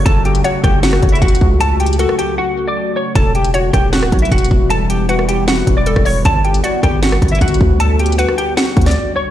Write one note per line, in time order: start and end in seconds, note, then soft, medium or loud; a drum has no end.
0.00 3.11 C#3 medium
0.00 3.11 F#3 medium
0.00 3.11 A3 medium
0.00 3.11 F#4 medium
0.06 0.43 F#1 loud
0.06 0.22 A4 medium
0.06 0.22 A5 loud
0.06 kick loud
0.06 closed hi-hat medium
0.25 0.42 G4 medium
0.25 0.41 G5 medium
0.25 closed hi-hat soft
0.35 closed hi-hat medium
0.44 0.61 F#4 medium
0.44 1.18 C#5 medium
0.44 0.60 F#5 loud
0.44 closed hi-hat medium
0.64 1.01 F#1 loud
0.64 0.80 G4 medium
0.64 0.80 G5 medium
0.64 kick loud
0.64 cross-stick medium
0.64 closed hi-hat medium
0.83 1.11 F#4 medium
0.83 1.10 F#5 medium
0.83 snare loud
0.83 closed hi-hat medium
0.93 cross-stick loud
1.02 1.21 F#1 loud
1.02 kick loud
1.02 closed hi-hat soft
1.09 1.20 E5 medium
1.09 closed hi-hat medium
1.13 1.21 E4 medium
1.13 closed hi-hat medium
1.22 1.40 F#1 loud
1.22 1.59 F#4 medium
1.22 1.58 F#5 medium
1.22 kick loud
1.22 closed hi-hat medium
1.28 closed hi-hat medium
1.35 closed hi-hat medium
1.41 2.06 C#2 loud
1.41 kick medium
1.61 1.77 A4 medium
1.61 1.77 A5 loud
1.61 closed hi-hat medium
1.80 1.96 G4 medium
1.80 1.96 G5 medium
1.80 closed hi-hat medium
1.86 closed hi-hat medium
1.93 closed hi-hat medium
1.99 2.16 F#4 medium
1.99 3.11 A4 medium
1.99 2.15 F#5 medium
1.99 closed hi-hat medium
2.09 cross-stick medium
2.19 2.35 G4 medium
2.19 2.35 G5 medium
2.19 closed hi-hat medium
2.38 2.66 F#4 medium
2.38 2.65 F#5 medium
2.67 2.95 D5 medium
2.67 2.95 D6 medium
2.96 3.12 C#5 medium
2.96 3.13 C#6 medium
3.15 3.71 E1 loud
3.15 6.22 E3 medium
3.15 9.31 G3 medium
3.15 9.31 B3 medium
3.15 6.22 E4 medium
3.15 3.32 A4 medium
3.15 3.31 A5 loud
3.15 kick loud
3.15 closed hi-hat medium
3.35 3.51 G4 medium
3.35 3.51 G5 medium
3.35 closed hi-hat soft
3.44 closed hi-hat medium
3.54 3.71 F#4 medium
3.54 4.27 C#5 medium
3.54 3.70 F#5 medium
3.54 closed hi-hat medium
3.73 4.04 E1 loud
3.73 3.90 G4 medium
3.73 3.89 G5 medium
3.73 kick loud
3.73 cross-stick medium
3.73 closed hi-hat medium
3.93 4.20 F#4 medium
3.93 4.20 F#5 medium
3.93 snare loud
3.93 closed hi-hat medium
4.03 4.12 D1 loud
4.03 cross-stick loud
4.12 4.31 B1 loud
4.12 kick loud
4.12 closed hi-hat soft
4.19 4.30 E5 medium
4.19 closed hi-hat medium
4.23 4.31 E4 medium
4.23 closed hi-hat medium
4.32 4.50 E1 loud
4.32 4.69 F#4 medium
4.32 4.68 F#5 medium
4.32 kick loud
4.32 closed hi-hat medium
4.38 closed hi-hat medium
4.44 closed hi-hat medium
4.51 5.63 E1 loud
4.51 kick medium
4.70 4.87 A4 medium
4.70 4.86 A5 loud
4.70 closed hi-hat medium
4.90 5.06 G4 medium
4.90 5.06 G5 medium
4.90 closed hi-hat medium
5.09 5.26 F#4 medium
5.09 5.82 B4 medium
5.09 5.25 F#5 medium
5.09 closed hi-hat medium
5.19 cross-stick medium
5.29 5.45 G4 medium
5.29 5.44 G5 medium
5.29 closed hi-hat medium
5.48 5.76 F#4 medium
5.48 5.75 F#5 medium
5.48 snare loud
5.48 closed hi-hat medium
5.67 5.95 E1 loud
5.67 kick loud
5.67 closed hi-hat medium
5.77 6.04 D5 medium
5.77 6.05 D6 medium
5.86 6.05 A4 medium
5.86 closed hi-hat medium
5.96 6.24 E1 loud
5.96 kick loud
5.96 cross-stick medium
6.05 6.24 C#5 medium
6.05 6.22 C#5 medium
6.05 6.22 C#6 medium
6.05 open hi-hat medium
6.25 6.62 G1 loud
6.25 9.31 D3 medium
6.25 9.31 F#4 medium
6.25 6.42 A4 medium
6.25 6.41 A5 loud
6.25 kick loud
6.25 closed hi-hat medium
6.45 6.61 G4 medium
6.45 6.60 G5 medium
6.45 closed hi-hat soft
6.54 closed hi-hat medium
6.64 6.80 F#4 medium
6.64 7.37 D5 medium
6.64 6.80 F#5 medium
6.64 closed hi-hat medium
6.83 7.20 G1 loud
6.83 7.00 G4 medium
6.83 6.99 G5 medium
6.83 kick loud
6.83 cross-stick medium
6.83 closed hi-hat medium
7.03 7.30 F#4 medium
7.03 7.30 F#5 medium
7.03 snare loud
7.03 closed hi-hat medium
7.12 cross-stick loud
7.22 7.41 G1 loud
7.22 kick loud
7.22 closed hi-hat soft
7.28 7.40 E5 medium
7.28 closed hi-hat medium
7.32 7.40 E4 medium
7.32 closed hi-hat medium
7.41 7.60 G1 loud
7.41 7.78 F#4 medium
7.41 7.78 F#5 medium
7.41 kick loud
7.41 closed hi-hat medium
7.48 closed hi-hat medium
7.54 closed hi-hat medium
7.61 8.26 D2 loud
7.61 kick medium
7.80 7.96 A4 medium
7.80 7.96 A5 loud
7.80 closed hi-hat medium
7.99 8.16 G4 medium
7.99 8.15 G5 medium
7.99 closed hi-hat medium
8.06 closed hi-hat medium
8.12 closed hi-hat medium
8.18 8.35 F#4 medium
8.18 9.31 B4 medium
8.18 8.35 F#5 medium
8.18 closed hi-hat medium
8.28 cross-stick medium
8.38 8.54 G4 medium
8.38 8.54 G5 medium
8.38 closed hi-hat medium
8.57 8.85 F#4 medium
8.57 8.85 F#5 medium
8.57 snare loud
8.57 closed hi-hat medium
8.77 8.96 D2 loud
8.77 kick loud
8.77 closed hi-hat soft
8.81 closed hi-hat medium
8.86 9.14 D5 medium
8.86 9.14 D6 medium
8.86 snare medium
8.86 closed hi-hat medium
8.91 closed hi-hat medium
9.16 9.31 C#5 medium
9.16 9.31 C#6 medium